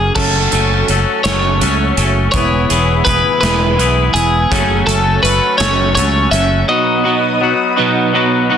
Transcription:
Already playing: F#2 C#3 F#3 A#3 C#4 G#4 A#4 F#5 G#5 C#6
0.15 F#1 C#3 F#3 A3 C#4 A4 C#5 F#5 C#6, kick, crash
0.51 F#1 C#3 F#3 A3 C#4 A4, closed hi-hat
0.88 F#1 F#3 A3 C#4 A4, closed hi-hat
1.24 F#1 C#3 F#3 A3 C#4 A4 C#5, snare, closed hi-hat
1.60 C#2 C#3 F#3 A3 C#4 A4, closed hi-hat
1.97 F#1 C#3 F#3 A3 C#4 A4, closed hi-hat
2.32 E1 E3 G#3 B3 G#4 B4 C#5 E5 B5, kick, closed hi-hat
2.36 E4 G#4
2.70 E1 E3 G#3 B3 E4 G#4, closed hi-hat
3.05 E1 E3 B3 E4 G#4 B4, kick, closed hi-hat
3.41 E1 E3 G#3 E4 G#4 B4, snare, closed hi-hat
3.46 B3
3.78 B1 E3 G#3 B3 E4 G#4, closed hi-hat
4.14 E1 E3 G#3 B3 E4 G#4, closed hi-hat
4.50 F#1 C#3 F#3 A3 C#4 A4 C#5 F#5 C#6, kick, closed hi-hat
4.87 F#1 C#3 F#3 A3 C#4 A4, closed hi-hat
5.23 F#1 F#3 A3 C#4 A4 B4, closed hi-hat
5.58 F#1 C#3 F#3 C#4 A4 C#5, snare, closed hi-hat
5.62 A3
5.95 C#2 C#3 F#3 A3 C#4 A4 C#5, closed hi-hat
6.31 F#1 C#3 F#3 A3 C#4 A4 E5, closed hi-hat
6.68 B2 F#3 B3 D#4 F#4 B4 D#5 D#6
7.04 B2 F#3 B3 D#4 F#4
7.41 F#3 B3 D#4 F#4
7.76 B2 F#3 B3 D#4 F#4
8.13 B2 F#3 B3 D#4 F#4
8.50 B2 F#3 B3 D#4 F#4

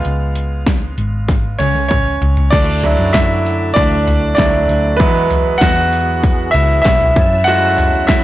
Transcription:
Already playing: G#3 B3 F4 F5
0.05 C#2, closed hi-hat
0.35 closed hi-hat
0.67 kick, snare, closed hi-hat
0.98 G#1, closed hi-hat
1.28 kick, snare, closed hi-hat
1.59 C#2 C#4 C#5, closed hi-hat, high tom
1.75 high tom
1.88 C#4 C#5, kick, closed hi-hat, mid tom
2.21 C#2, closed hi-hat, floor tom
2.37 floor tom
2.50 D2 D3 A3 D4 E4 F#4 D5, kick, open hi-hat, crash
2.83 F#3 D4 E4, floor tom, open hi-hat
2.99 F#2
3.13 E4 E5, kick, snare, clap, open hi-hat
3.46 open hi-hat
3.74 D2 D4 D5, kick, open hi-hat
4.08 floor tom, open hi-hat
4.35 D2 F#3 D4 E4 D5, kick, snare, clap, open hi-hat
4.54 floor tom
4.69 D2, open hi-hat
4.97 E2 E3 F#3 G#3 B4, kick, open hi-hat
5.01 B3 E4 G#4
5.31 floor tom, open hi-hat
5.58 E2 F#5, kick, snare, clap
5.62 F#4, open hi-hat
5.93 open hi-hat
6.24 kick, open hi-hat
6.51 C#2 E4 E5, floor tom, open hi-hat
6.82 B1 E5, kick, snare, clap, open hi-hat
6.86 E4
7.01 floor tom
7.15 F#2 F#3 C#4 E4 A5, kick, open hi-hat
7.44 G#3 A3 E4 F#4 F#5, open hi-hat
7.78 floor tom, open hi-hat
7.93 E2
8.07 E4 E5, kick, snare, clap, open hi-hat

